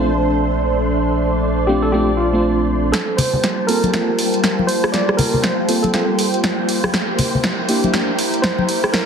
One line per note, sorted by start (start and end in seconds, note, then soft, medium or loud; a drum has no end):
0.00 2.92 A#1 medium
0.00 0.56 F3 medium
0.00 0.10 A3 medium
0.00 2.90 A3 medium
0.00 0.10 C4 medium
0.00 0.10 D4 medium
0.00 2.90 D4 medium
0.00 4.30 D4 medium
0.00 0.11 F4 medium
0.00 0.92 C5 medium
0.00 2.95 C5 medium
0.00 9.06 C5 medium
0.00 0.27 E5 medium
0.00 6.94 A5 medium
0.00 2.95 C6 medium
0.94 2.92 D5 medium
1.67 1.91 A3 medium
1.67 1.91 C4 medium
1.67 1.91 D4 medium
1.67 1.92 F4 medium
1.67 1.84 G4 medium
1.82 1.93 A4 loud
1.92 2.10 A3 medium
1.92 2.10 C4 medium
1.92 2.10 D4 medium
1.92 2.11 F4 medium
1.92 2.19 G4 loud
2.17 2.64 F4 medium
2.33 2.92 A3 medium
2.33 2.92 C4 medium
2.33 2.93 D4 medium
2.33 2.93 F4 medium
2.92 6.90 G3 medium
2.92 9.06 A#3 medium
2.92 6.94 F4 medium
2.92 6.90 F4 medium
2.92 9.06 G4 medium
2.92 3.19 A4 medium
2.92 9.06 C5 medium
2.92 9.06 G5 medium
2.92 6.90 A5 medium
2.92 snare soft
2.92 closed hi-hat medium
3.07 8.56 A#3 medium
3.17 3.69 C5 medium
3.17 open hi-hat loud
3.17 low conga loud
3.26 8.56 G5 medium
3.33 low conga medium
3.44 snare soft
3.44 closed hi-hat medium
3.67 3.91 A#3 medium
3.67 3.91 C4 medium
3.67 3.91 F4 medium
3.67 3.92 A4 medium
3.67 4.64 A#4 medium
3.67 open hi-hat medium
3.83 closed hi-hat medium
3.83 high conga medium
3.93 4.10 A#3 medium
3.93 4.10 C4 medium
3.93 4.10 F4 medium
3.93 4.11 A4 medium
3.93 snare soft
3.93 closed hi-hat medium
4.19 open hi-hat loud
4.34 closed hi-hat medium
4.44 snare soft
4.44 closed hi-hat medium
4.59 high conga medium
4.67 4.94 C5 loud
4.67 open hi-hat medium
4.84 cross-stick medium
4.92 5.16 D5 loud
4.92 snare medium
4.92 closed hi-hat medium
5.09 cross-stick medium
5.17 5.44 A#4 medium
5.17 open hi-hat loud
5.17 low conga loud
5.34 low conga medium
5.42 5.80 C5 medium
5.42 snare medium
5.42 closed hi-hat medium
5.68 5.91 A#3 medium
5.68 5.91 C4 medium
5.68 5.91 F4 medium
5.68 5.92 A4 medium
5.68 open hi-hat loud
5.83 6.30 A4 medium
5.83 closed hi-hat medium
5.83 high conga medium
5.93 6.10 A#3 medium
5.93 6.10 C4 medium
5.93 6.10 F4 medium
5.93 6.11 A4 medium
5.93 snare medium
5.93 closed hi-hat medium
6.19 open hi-hat loud
6.34 closed hi-hat soft
6.44 snare medium
6.44 closed hi-hat medium
6.69 open hi-hat medium
6.84 cross-stick medium
6.84 high conga medium
6.93 9.06 E4 medium
6.93 snare medium
6.93 closed hi-hat medium
7.10 9.06 A#5 medium
7.19 open hi-hat loud
7.19 low conga medium
7.35 low conga medium
7.44 snare medium
7.44 closed hi-hat medium
7.68 7.91 A#3 medium
7.68 7.91 D4 medium
7.68 7.91 E4 medium
7.68 7.92 G4 medium
7.68 open hi-hat loud
7.84 closed hi-hat medium
7.84 high conga medium
7.93 8.10 A#3 medium
7.93 8.10 D4 medium
7.93 8.10 E4 medium
7.93 8.11 G4 medium
7.93 snare medium
7.93 closed hi-hat medium
8.19 open hi-hat loud
8.34 closed hi-hat soft
8.42 8.94 C5 loud
8.42 snare medium
8.42 closed hi-hat medium
8.59 high conga medium
8.69 open hi-hat loud
8.84 cross-stick medium
8.92 9.06 A#4 loud
8.92 snare medium
8.92 closed hi-hat medium